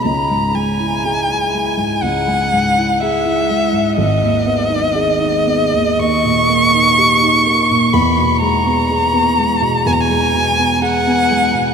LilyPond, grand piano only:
\new Staff \with { instrumentName = "Grand piano" } { \clef bass \time 4/4 \key cis \dorian \tempo 4 = 62 cis,16 gis,16 gis16 e'16 gis'16 e'16 gis16 gis,16 cis,16 gis16 gis,16 e'16 gis'16 e'16 gis16 gis,16 | gis,,16 dis,16 b16 dis'16 gis'16 dis'16 b16 dis,16 dis,16 ais,16 ais16 dis'16 g'16 dis'16 ais16 ais,16 | e,16 b,16 gis16 b16 gis'16 b16 gis16 b,16 e,16 gis16 b,16 b16 gis'16 b16 gis16 b,16 | }